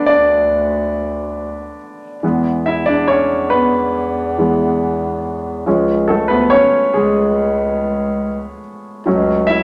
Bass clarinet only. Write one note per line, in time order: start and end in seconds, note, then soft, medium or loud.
0.08 1.76 D2 medium
2.23 2.83 E2 medium
2.88 3.08 E2 medium
3.10 5.62 E2 medium
5.66 6.26 C#2 medium
6.30 6.64 D2 medium
6.94 8.60 C#2 medium
9.07 9.63 C#2 medium